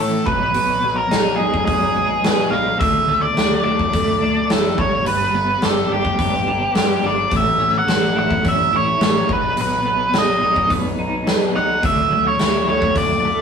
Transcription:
0.00 0.19 A2 medium
0.00 0.26 E3 medium
0.00 0.27 A3 medium
0.00 0.27 C#4 medium
0.00 0.27 E4 medium
0.00 0.25 A4 medium
0.26 0.47 B1 medium
0.26 0.53 B2 medium
0.26 0.99 B4 medium
0.26 kick medium
0.54 0.75 B1 medium
0.54 1.96 B2 medium
0.54 open hi-hat soft
0.83 1.03 B1 medium
0.83 1.67 F#3 medium
0.96 1.36 A#4 medium
1.11 1.32 B1 medium
1.11 2.52 D#4 medium
1.11 snare medium
1.11 open hi-hat soft
1.36 1.60 B1 medium
1.36 1.95 G#3 medium
1.36 1.64 G#4 medium
1.54 kick medium
1.65 1.89 B1 medium
1.65 2.81 F#3 medium
1.65 2.54 G#4 medium
1.65 kick medium
1.65 open hi-hat soft
1.95 2.16 B1 medium
1.95 2.52 G#3 medium
2.23 2.44 B2 medium
2.23 2.81 B2 medium
2.23 snare loud
2.23 open hi-hat soft
2.51 2.72 B1 medium
2.51 2.81 G#3 medium
2.51 2.79 F5 medium
2.80 3.01 D2 medium
2.80 4.22 D3 medium
2.80 3.24 E5 medium
2.80 kick loud
2.80 open hi-hat soft
3.09 3.29 D2 medium
3.09 3.93 A3 medium
3.22 3.63 D5 medium
3.37 3.57 D2 medium
3.37 4.78 F#4 medium
3.37 snare medium
3.37 open hi-hat soft
3.65 3.86 D2 medium
3.65 4.21 D4 medium
3.65 4.52 D5 medium
3.79 kick medium
3.93 4.14 D2 medium
3.93 4.78 A3 medium
3.93 kick medium
3.93 open hi-hat soft
4.22 4.42 D2 medium
4.22 4.78 D4 medium
4.50 4.70 F#1 medium
4.50 4.79 E3 medium
4.50 4.80 A4 medium
4.50 snare loud
4.50 open hi-hat soft
4.78 4.98 G1 medium
4.78 5.06 G2 medium
4.78 5.04 C#5 medium
4.78 kick medium
5.06 5.27 G1 medium
5.06 6.48 G2 medium
5.06 5.65 B4 medium
5.06 open hi-hat medium
5.33 5.54 G1 medium
5.33 6.18 B3 medium
5.61 5.82 G1 medium
5.61 7.04 G4 medium
5.61 5.92 A4 medium
5.61 snare medium
5.61 open hi-hat soft
5.89 6.10 G1 medium
5.89 6.46 D4 medium
5.93 7.08 G4 medium
6.05 kick medium
6.19 6.40 G1 medium
6.19 7.32 B3 medium
6.19 kick medium
6.19 open hi-hat soft
6.46 6.67 G1 medium
6.46 7.02 D4 medium
6.75 6.95 G2 medium
6.75 7.32 G3 medium
6.75 snare medium
6.75 open hi-hat soft
7.03 7.23 G1 medium
7.03 7.32 D4 medium
7.03 7.34 D5 medium
7.31 7.52 A1 medium
7.31 8.73 A2 medium
7.31 kick loud
7.31 open hi-hat soft
7.36 7.78 E5 medium
7.59 7.80 A1 medium
7.59 8.43 C#4 medium
7.79 8.18 F#5 medium
7.87 8.08 A1 medium
7.87 9.29 A4 medium
7.87 snare medium
7.87 open hi-hat soft
8.15 8.36 A1 medium
8.15 8.72 E4 medium
8.15 8.47 F#5 medium
8.31 kick medium
8.45 8.65 A1 medium
8.45 9.29 C#4 medium
8.45 8.76 E5 medium
8.45 kick medium
8.45 open hi-hat soft
8.73 8.93 A1 medium
8.73 9.29 E4 medium
8.73 9.32 C#5 medium
9.00 9.21 A1 medium
9.00 9.29 A3 medium
9.00 snare loud
9.00 open hi-hat soft
9.29 9.50 B1 medium
9.29 9.56 B2 medium
9.29 9.60 B4 medium
9.29 kick medium
9.56 9.77 B1 medium
9.56 10.99 B2 medium
9.56 open hi-hat medium
9.61 10.17 B4 medium
9.85 10.06 B1 medium
9.85 10.70 B3 medium
10.14 10.35 B1 medium
10.14 11.55 G#4 medium
10.14 snare medium
10.14 open hi-hat soft
10.18 10.69 D#5 medium
10.42 10.63 B1 medium
10.42 10.98 D#4 medium
10.56 kick medium
10.70 10.91 B1 medium
10.70 11.83 B3 medium
10.70 kick medium
10.70 open hi-hat soft
10.98 11.19 B1 medium
10.98 11.54 D#4 medium
11.27 11.47 B2 medium
11.27 11.83 F#3 medium
11.27 snare medium
11.27 open hi-hat soft
11.55 11.76 B1 medium
11.55 11.83 D#4 medium
11.55 11.85 F#5 medium
11.83 12.04 D2 medium
11.83 13.24 D3 medium
11.83 12.24 E5 medium
11.83 kick loud
11.83 open hi-hat soft
12.11 12.32 D2 medium
12.11 12.95 F#3 medium
12.27 12.68 C#5 medium
12.39 12.61 D2 medium
12.39 13.42 E4 medium
12.39 snare medium
12.39 open hi-hat soft
12.67 12.88 D2 medium
12.67 13.24 A3 medium
12.67 12.95 C#5 medium
12.82 kick medium
12.95 13.16 D2 medium
12.95 13.42 F#3 medium
12.95 13.42 D5 medium
12.95 kick medium
12.95 open hi-hat soft
13.24 13.42 D2 medium
13.24 13.42 A3 medium

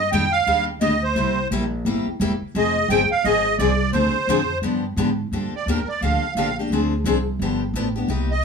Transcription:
0.00 0.11 G2 medium
0.00 0.10 D#5 medium
0.12 0.46 F2 medium
0.12 0.23 D#3 medium
0.12 0.24 G3 medium
0.12 0.24 A#3 medium
0.12 0.24 D4 medium
0.12 0.24 G4 medium
0.12 0.32 G5 medium
0.32 0.65 F5 medium
0.47 0.80 D#2 medium
0.47 0.68 D#3 medium
0.47 0.68 G3 medium
0.47 0.68 A#3 medium
0.47 0.68 D4 medium
0.47 0.68 G4 medium
0.81 1.15 D2 medium
0.81 0.92 D#3 medium
0.81 0.92 G3 medium
0.81 0.92 A#3 medium
0.81 0.93 D4 medium
0.81 0.93 G4 medium
0.81 1.03 D#5 medium
1.03 1.48 C5 medium
1.16 1.50 C2 medium
1.16 1.37 C3 medium
1.16 1.37 G3 medium
1.16 1.37 A#3 medium
1.16 1.37 E4 medium
1.16 1.38 G4 medium
1.51 1.84 A#1 medium
1.51 1.62 C3 medium
1.51 1.62 G3 loud
1.51 1.63 A#3 medium
1.51 1.63 E4 medium
1.51 1.63 G4 medium
1.85 2.05 G1 medium
1.85 2.06 C3 medium
1.85 2.06 G3 medium
1.85 2.06 A#3 medium
1.85 2.07 E4 medium
1.85 2.07 G4 medium
2.06 muted upright bass stroke soft
2.20 2.39 E1 medium
2.20 2.31 C3 medium
2.20 2.32 G3 medium
2.20 2.32 A#3 loud
2.20 2.32 E4 medium
2.20 2.32 G4 medium
2.41 muted upright bass stroke soft
2.55 2.88 F1 medium
2.55 2.76 F3 medium
2.55 2.76 C4 medium
2.55 2.76 D#4 medium
2.55 2.76 G#4 medium
2.55 2.89 D#5 medium
2.88 3.09 G1 medium
2.88 3.01 F3 medium
2.88 3.01 C4 loud
2.88 3.01 D#4 medium
2.88 3.01 G#4 loud
2.88 3.09 G5 medium
3.10 3.25 F5 medium
3.10 muted upright bass stroke soft
3.24 3.58 G#1 medium
3.24 3.45 F3 medium
3.24 3.45 C4 medium
3.24 3.46 D#4 medium
3.24 3.46 G#4 medium
3.24 3.57 D#5 loud
3.58 3.92 C2 medium
3.58 3.70 F3 medium
3.58 3.70 C4 medium
3.58 3.70 D#4 medium
3.58 3.71 G#4 medium
3.58 3.91 D5 medium
3.93 4.13 D2 medium
3.93 4.14 D3 medium
3.93 4.14 F3 medium
3.93 4.14 C4 medium
3.93 4.15 D4 medium
3.93 4.15 G#4 medium
3.93 4.58 C5 medium
4.14 muted upright bass stroke soft
4.27 4.61 F2 medium
4.27 4.39 D3 medium
4.27 4.40 F3 medium
4.27 4.40 C4 medium
4.27 4.40 D4 loud
4.27 4.40 G#4 loud
4.62 4.96 G2 medium
4.62 4.83 D3 medium
4.62 4.84 F3 medium
4.62 4.84 B3 medium
4.62 4.84 D4 medium
4.62 4.84 G4 medium
4.96 5.30 G#2 medium
4.96 5.08 D3 medium
4.96 5.09 F3 medium
4.96 5.09 B3 medium
4.96 5.09 D4 medium
4.96 5.09 G4 medium
5.32 5.51 G2 medium
5.32 5.53 D3 medium
5.32 5.53 F3 medium
5.32 5.53 A#3 medium
5.32 5.53 D4 medium
5.32 5.54 G4 medium
5.52 5.68 D5 medium
5.52 muted upright bass stroke soft
5.66 5.86 D#2 medium
5.66 5.78 D3 medium
5.66 5.78 F3 medium
5.66 5.79 A#3 medium
5.66 5.79 D4 medium
5.66 5.79 G4 medium
5.66 5.88 A#4 medium
5.87 6.01 D5 medium
5.87 muted upright bass stroke soft
6.01 6.21 D2 medium
6.01 6.23 D3 medium
6.01 6.23 F3 medium
6.01 6.23 A#3 medium
6.01 6.23 D4 medium
6.01 6.23 G4 medium
6.01 6.34 F5 medium
6.22 muted upright bass stroke soft
6.35 6.69 A#1 medium
6.35 6.47 D3 medium
6.35 6.48 F3 medium
6.35 6.48 A#3 medium
6.35 6.48 D4 medium
6.35 6.48 G4 medium
6.35 6.57 F5 medium
6.59 6.72 A#3 soft
6.59 6.72 D4 soft
6.59 6.71 G4 medium
6.70 7.04 D2 medium
6.70 6.92 D3 medium
6.70 6.92 F3 medium
6.70 6.92 C4 medium
6.70 6.93 D4 medium
6.70 6.93 G#4 medium
7.04 7.38 C2 medium
7.04 7.16 D3 medium
7.04 7.17 F3 medium
7.04 7.17 C4 medium
7.04 7.17 D4 loud
7.04 7.17 G#4 medium
7.39 7.73 G1 medium
7.39 7.62 D3 medium
7.39 7.62 F3 medium
7.39 7.62 B3 medium
7.39 7.62 D4 medium
7.39 7.62 G4 medium
7.74 8.07 A1 medium
7.74 7.86 D3 medium
7.74 7.86 F3 medium
7.74 7.86 B3 medium
7.74 7.87 D4 medium
7.74 7.86 G4 medium
7.96 8.09 B3 soft
7.96 8.10 D4 soft
7.96 8.09 G4 medium
8.08 8.42 C2 medium
8.08 8.30 C3 medium
8.08 8.30 G3 medium
8.08 8.30 A#3 medium
8.08 8.30 D#4 medium
8.08 8.30 G4 medium
8.31 8.44 D#5 medium

